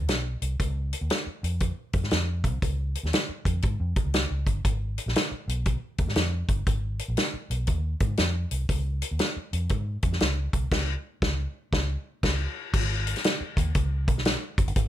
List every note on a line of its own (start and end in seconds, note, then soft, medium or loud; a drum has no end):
0.01 0.09 D#2 medium
0.08 0.35 B1 medium
0.08 snare medium
0.08 closed hi-hat medium
0.42 0.56 C2 medium
0.42 closed hi-hat medium
0.60 0.92 C#2 loud
0.60 kick loud
0.60 closed hi-hat medium
0.93 closed hi-hat medium
1.01 1.08 D#2 medium
1.10 snare loud
1.10 closed hi-hat medium
1.27 muted fingered electric bass stroke soft
1.43 1.70 F2 medium
1.43 closed hi-hat medium
1.60 kick medium
1.60 closed hi-hat medium
1.93 2.01 F#2 medium
1.93 kick medium
1.93 closed hi-hat medium
2.03 2.10 G#2 medium
2.03 snare soft
2.11 2.45 F2 medium
2.11 snare medium
2.11 closed hi-hat medium
2.44 2.58 C2 medium
2.44 kick medium
2.44 closed hi-hat medium
2.62 2.95 C#2 medium
2.62 kick loud
2.62 closed hi-hat medium
2.95 closed hi-hat medium
3.03 3.11 D#2 medium
3.03 snare soft
3.13 snare loud
3.13 closed hi-hat medium
3.29 muted fingered electric bass stroke soft
3.45 3.59 F2 medium
3.45 kick medium
3.45 closed hi-hat medium
3.62 3.76 G#2 medium
3.62 kick medium
3.62 closed hi-hat medium
3.80 3.93 F2 medium
3.96 kick loud
3.96 closed hi-hat medium
4.05 4.25 C#2 medium
4.14 snare medium
4.14 closed hi-hat medium
4.31 4.43 C#2 medium
4.47 4.61 G1 medium
4.47 kick medium
4.47 closed hi-hat medium
4.65 4.97 G#1 medium
4.65 kick medium
4.65 closed hi-hat medium
4.98 closed hi-hat medium
5.06 5.13 A#1 medium
5.06 snare soft
5.16 snare loud
5.16 closed hi-hat medium
5.31 muted fingered electric bass stroke soft
5.48 5.75 B1 medium
5.48 closed hi-hat medium
5.66 kick medium
5.66 closed hi-hat medium
5.98 6.06 D#2 medium
5.98 kick medium
5.98 closed hi-hat medium
6.07 6.14 G#2 medium
6.07 snare soft
6.16 6.42 F2 medium
6.16 snare medium
6.16 closed hi-hat medium
6.49 6.63 G1 medium
6.49 kick medium
6.49 closed hi-hat medium
6.67 7.00 G#1 medium
6.67 kick medium
6.67 closed hi-hat medium
6.99 closed hi-hat medium
7.08 7.15 A#1 medium
7.17 snare loud
7.17 closed hi-hat medium
7.33 muted fingered electric bass stroke soft
7.50 7.64 B1 medium
7.50 closed hi-hat medium
7.67 7.94 D#2 medium
7.67 kick medium
7.67 closed hi-hat medium
8.00 8.15 G#2 medium
8.00 kick medium
8.00 closed hi-hat medium
8.17 8.44 F2 medium
8.17 snare medium
8.17 closed hi-hat medium
8.51 8.65 C2 medium
8.51 closed hi-hat medium
8.69 9.02 C#2 loud
8.69 kick loud
8.69 closed hi-hat medium
9.02 closed hi-hat medium
9.11 9.18 D#2 medium
9.19 snare loud
9.19 closed hi-hat medium
9.36 muted fingered electric bass stroke soft
9.53 9.67 F2 medium
9.53 closed hi-hat medium
9.69 9.96 G#2 medium
9.69 kick medium
9.69 closed hi-hat medium
10.03 10.17 F2 medium
10.03 kick medium
10.03 closed hi-hat medium
10.13 snare soft
10.20 10.47 C#2 medium
10.20 snare medium
10.20 closed hi-hat medium
10.53 10.68 C2 medium
10.53 kick medium
10.53 closed hi-hat medium
10.72 10.94 C#2 medium
10.72 kick loud
10.72 snare loud
10.72 crash medium
11.22 11.44 C#2 medium
11.22 kick loud
11.22 snare loud
11.73 11.95 C#2 loud
11.73 kick loud
11.73 snare loud
12.23 12.46 C#2 medium
12.23 kick medium
12.23 snare medium
12.23 crash medium
12.74 13.13 G#1 loud
12.74 kick loud
12.74 crash loud
13.07 closed hi-hat medium
13.16 snare soft
13.16 closed hi-hat medium
13.24 snare loud
13.24 closed hi-hat medium
13.41 muted fingered electric bass stroke soft
13.57 13.71 D#2 loud
13.57 kick medium
13.57 closed hi-hat medium
13.75 14.08 C#2 loud
13.75 kick loud
13.75 closed hi-hat medium
14.08 14.35 B1 medium
14.08 kick loud
14.08 closed hi-hat medium
14.18 snare soft
14.25 snare loud
14.25 closed hi-hat medium
14.58 14.65 F#1 medium
14.58 kick loud
14.58 closed hi-hat medium
14.67 14.74 G1 medium
14.67 closed hi-hat soft
14.76 14.88 G#1 loud
14.76 kick loud
14.76 closed hi-hat medium